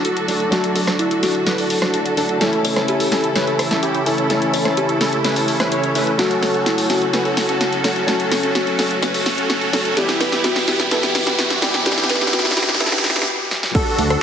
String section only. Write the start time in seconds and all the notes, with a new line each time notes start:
Already playing: D3 F#3 A3 F#4 A4
2.41 C#3 E3 E4
6.19 F#3 F#4
9.97 B2 E3 G3 E4 G4
11.86 D4
13.75 A2 D3 F#3 D4 F#4